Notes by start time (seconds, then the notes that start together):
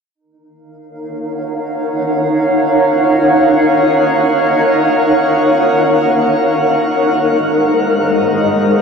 0.15 D#4
0.20 A#4
0.44 F5
0.80 C#5
0.85 F#5
6.77 G#3
7.06 G#4
7.16 C5
7.22 D#5